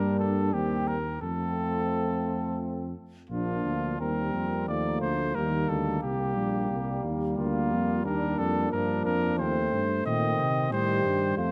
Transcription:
0.00 0.55 G2 soft
0.00 0.52 G3 soft
0.00 0.53 A#3 soft
0.00 0.52 D4 soft
0.00 0.19 A#4 soft
0.19 0.54 A4 soft
0.53 1.21 D#2 soft
0.53 0.98 G3 soft
0.53 0.97 A#3 soft
0.53 0.97 C4 soft
0.53 0.89 G4 soft
0.87 1.21 A#4 soft
1.22 2.94 F2 soft
1.22 2.93 F3 soft
1.22 2.93 A3 soft
1.22 2.93 C4 soft
1.22 2.58 A4 soft
3.29 3.62 A#1 soft
3.29 3.96 F3 soft
3.29 3.96 A#3 soft
3.29 4.02 D4 soft
3.29 3.95 F4 soft
3.65 3.99 D2 soft
4.00 4.34 D#2 soft
4.00 4.70 G3 soft
4.00 4.67 A#3 soft
4.00 4.70 C4 soft
4.00 4.67 A#4 soft
4.34 4.69 F2 soft
4.68 5.01 D#2 soft
4.68 5.36 F3 soft
4.68 5.36 A3 soft
4.68 5.35 A#3 soft
4.68 5.01 D5 soft
5.01 5.35 D2 soft
5.01 5.36 C5 medium
5.35 5.68 D#2 soft
5.35 6.02 D#3 soft
5.35 6.01 G3 soft
5.35 7.34 A#3 soft
5.35 5.71 A#4 soft
5.69 6.02 D2 soft
5.69 6.02 A4 soft
6.02 6.38 C2 soft
6.02 7.35 G3 soft
6.02 8.74 G3 soft
6.02 7.02 G4 soft
6.37 6.70 A#1 soft
6.71 7.03 C2 soft
7.04 7.37 D#2 soft
7.37 7.74 D2 soft
7.37 8.07 A#3 soft
7.37 8.04 A#3 soft
7.37 8.01 F4 soft
7.72 8.04 F2 soft
8.05 8.38 D#2 soft
8.05 9.37 A#3 soft
8.05 8.72 D4 soft
8.05 8.40 A#4 soft
8.38 8.72 F2 soft
8.38 8.71 A4 soft
8.72 9.05 G2 soft
8.72 9.78 F3 soft
8.72 9.41 D4 soft
8.72 9.04 A#4 soft
9.05 9.41 F2 soft
9.05 9.38 A#4 medium
9.38 9.72 D#2 soft
9.38 10.43 A3 soft
9.38 9.83 C4 soft
9.38 10.04 C5 medium
9.73 10.05 G2 soft
10.04 10.38 A#2 soft
10.04 10.67 D#3 soft
10.04 10.74 C4 soft
10.04 10.71 D#5 medium
10.39 10.73 C3 soft
10.71 11.04 A2 soft
10.71 11.39 D#3 soft
10.71 11.40 G3 soft
10.71 11.37 G4 soft
10.71 11.37 C5 medium
11.05 11.37 G2 soft
11.37 11.52 F2 soft
11.37 11.52 F3 soft
11.37 11.52 A3 soft
11.37 11.52 F4 soft
11.37 11.52 C5 medium

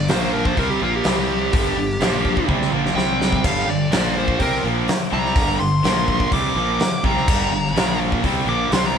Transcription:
0.08 0.54 A#1 medium
0.08 0.57 A#2 medium
0.08 0.57 F3 medium
0.08 0.58 A#3 loud
0.08 0.20 C5 medium
0.08 snare loud
0.08 open hi-hat medium
0.21 0.33 C5 loud
0.33 0.45 A#4 loud
0.45 0.59 C5 loud
0.45 kick medium
0.57 0.80 C2 medium
0.57 0.81 C3 medium
0.57 0.82 G3 loud
0.57 0.82 C4 medium
0.57 0.70 A#4 loud
0.57 kick medium
0.57 open hi-hat soft
0.70 0.81 G4 medium
0.82 1.04 A#1 medium
0.82 1.05 A#2 medium
0.82 1.06 F3 medium
0.82 1.06 A#3 medium
0.82 0.94 F4 loud
0.96 1.06 G4 loud
1.04 1.50 C2 medium
1.04 1.53 C3 medium
1.04 1.54 G3 loud
1.04 1.54 C4 loud
1.04 2.46 G4 medium
1.04 snare loud
1.04 open hi-hat medium
1.53 1.75 G1 medium
1.53 1.77 G2 loud
1.53 1.77 D3 medium
1.53 1.78 G3 loud
1.53 kick loud
1.53 open hi-hat medium
1.77 1.99 G1 medium
1.77 1.97 G2 medium
1.77 1.97 D3 medium
1.90 snare soft
2.00 2.45 A#1 loud
2.00 2.49 A#2 medium
2.00 2.49 F3 medium
2.00 2.49 A#3 loud
2.00 snare loud
2.00 open hi-hat medium
2.25 kick medium
2.37 kick medium
2.48 2.71 C2 medium
2.48 2.72 C3 medium
2.48 2.72 G3 medium
2.48 2.73 C4 medium
2.48 kick medium
2.48 high tom medium
2.62 snare medium
2.72 2.94 A#1 medium
2.72 2.96 A#2 medium
2.72 2.96 F3 medium
2.72 2.97 A#3 loud
2.86 snare medium
2.95 3.40 C2 medium
2.95 3.44 C3 medium
2.95 3.44 G3 medium
2.95 3.44 C4 medium
2.95 3.43 G5 loud
2.95 snare medium
3.22 snare loud
3.33 kick medium
3.43 3.67 G1 loud
3.43 3.67 G2 loud
3.43 3.67 D3 loud
3.43 3.68 G3 loud
3.43 3.68 F5 medium
3.43 kick loud
3.43 splash medium
3.43 crash loud
3.68 3.90 G1 medium
3.68 3.88 G2 medium
3.68 3.88 D3 medium
3.68 4.16 D5 medium
3.91 4.37 A#1 loud
3.91 4.37 A#2 loud
3.91 4.38 F3 medium
3.91 4.39 A#3 loud
3.91 snare loud
3.91 open hi-hat medium
4.18 4.41 C5 loud
4.28 kick medium
4.38 4.63 C2 loud
4.38 4.62 C3 medium
4.38 4.63 G3 medium
4.38 4.63 C4 loud
4.38 kick medium
4.38 open hi-hat medium
4.42 4.65 A#4 loud
4.63 4.87 A#1 loud
4.63 4.87 A#2 medium
4.63 4.87 F3 medium
4.63 4.87 A#3 loud
4.87 muted distorted electric guitar stroke medium
4.87 muted fingered electric bass stroke soft
4.87 snare loud
4.87 open hi-hat medium
5.11 5.35 C2 loud
5.11 5.35 C3 loud
5.11 5.34 G3 loud
5.11 5.35 C4 loud
5.11 5.59 A#5 loud
5.26 snare soft
5.34 5.58 G1 loud
5.34 5.58 G2 loud
5.34 5.59 D3 loud
5.34 5.59 G3 loud
5.34 kick loud
5.34 open hi-hat medium
5.59 5.83 G1 medium
5.59 5.79 G2 medium
5.59 5.79 D3 medium
5.59 6.30 C6 medium
5.83 6.29 A#1 loud
5.83 6.31 A#2 medium
5.83 6.31 F3 loud
5.83 6.31 A#3 medium
5.83 snare loud
5.83 open hi-hat medium
6.08 kick medium
6.20 kick medium
6.32 6.54 C2 medium
6.32 6.55 C3 medium
6.32 6.55 G3 medium
6.32 6.56 C4 medium
6.32 7.03 D6 loud
6.32 kick medium
6.32 open hi-hat medium
6.55 6.78 A#1 loud
6.55 6.79 A#2 medium
6.55 6.79 F3 loud
6.55 6.79 A#3 loud
6.79 muted distorted electric guitar stroke medium
6.79 muted fingered electric bass stroke soft
6.79 snare loud
6.79 open hi-hat medium
7.03 7.26 C2 loud
7.03 7.27 C3 medium
7.03 7.28 G3 loud
7.03 7.28 C4 loud
7.03 7.98 A#5 loud
7.03 kick medium
7.17 snare soft
7.27 7.50 G1 loud
7.27 7.50 G2 medium
7.27 7.50 D3 loud
7.27 7.52 G3 loud
7.27 kick loud
7.27 crash loud
7.51 7.73 G1 medium
7.51 7.71 G2 medium
7.51 7.71 D3 medium
7.65 snare soft
7.73 8.19 A#1 loud
7.73 8.23 A#2 medium
7.73 8.23 F3 medium
7.73 8.23 A#3 loud
7.73 open hi-hat medium
7.78 snare loud
8.12 kick medium
8.23 8.45 C2 medium
8.23 8.46 C3 medium
8.23 8.47 G3 medium
8.23 8.47 C4 medium
8.23 kick medium
8.23 open hi-hat soft
8.46 8.69 A#1 loud
8.46 8.70 A#2 medium
8.46 8.71 F3 medium
8.46 8.71 A#3 loud
8.46 8.72 D6 loud
8.70 8.98 C2 loud
8.70 8.98 C3 medium
8.70 8.98 G3 loud
8.70 8.98 C4 loud
8.70 8.86 C6 medium
8.70 snare loud
8.70 open hi-hat medium
8.86 8.97 A#5 medium

